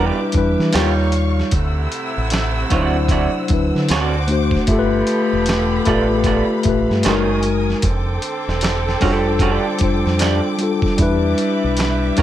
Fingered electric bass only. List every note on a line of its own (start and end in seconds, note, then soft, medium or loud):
0.00 0.10 E2 medium
0.35 0.55 E2 medium
0.59 0.72 E3 medium
0.75 1.41 D#2 loud
1.53 1.86 D2 loud
2.18 2.64 A1 medium
2.72 3.26 D2 medium
3.51 3.71 D2 medium
3.75 3.87 D3 medium
3.90 4.57 D2 loud
4.69 5.02 G1 loud
5.33 5.79 E1 medium
5.88 6.42 A1 medium
6.66 6.86 A1 medium
6.90 7.03 G2 medium
7.06 7.73 F#1 loud
7.84 8.17 F1 loud
8.48 8.95 E1 medium
9.03 9.57 F1 medium
9.82 10.02 F1 medium
10.06 10.39 F2 medium
10.99 11.33 E2 medium
11.64 12.10 B1 medium
12.19 12.22 E2 medium